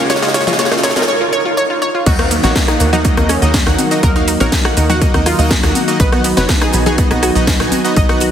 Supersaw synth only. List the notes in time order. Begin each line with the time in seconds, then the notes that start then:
0.10 A#3 C#4 F4 C#5
0.22 A#3 C#4 F4 D#5
0.34 A#3 C#4 F4 C#5
0.47 A#3 C#4 F4 D#5
0.59 A#3 C#4 F4 C#5
0.72 A#3 C#4 F4 D#5
0.83 A#3 C#4 F4 C#5
0.96 A#3 C#4 F4 D#5
2.06 A#3 D#4 F#4 D#5
2.19 A#3 D#4 F#4 F5
2.44 A#3 D#4 F#4 C#5
2.68 A#3 D#4 F#4 F#5
2.93 A#3 D#4 F#4 F#5
3.05 A#3 D#4 F#4 D#5
3.17 A#3 D#4 F#4 D#5
3.42 A#3 D#4 F#4 D#5
3.67 A#3 D#4 F#4 F#5
3.91 A#3 D#4 F#4 D#5
4.03 A#3 D#4 F#4 D#5
4.16 A#3 D#4 F#4 F5
4.40 A#3 D#4 F#4 C#5
4.65 A#3 D#4 F#4 F#5
4.90 A#3 D#4 F#4 F#5
5.01 A#3 D#4 F#4 D#5
5.14 A#3 D#4 F#4 D#5
5.39 A#3 D#4 F#4 D#5
5.63 A#3 D#4 F#4 F#5
5.88 A#3 D#4 F#4 D#5
6.00 B3 D#4 D#5
6.12 B3 D#4 F#4 F#5
6.37 B3 D#4 F#4 C#5
6.62 B3 D#4 F#4 G#5
6.86 B3 D#4 F#4 G#5
6.98 B3 D#4 F#4 D#5
7.11 B3 D#4 F#4 D#5
7.35 B3 D#4 F#4 D#5
7.60 B3 D#4 F#4 G#5
7.85 B3 D#4 F#4 D#5
7.96 D#4 F#4 D#5
8.09 B3 D#4 F#4 F#5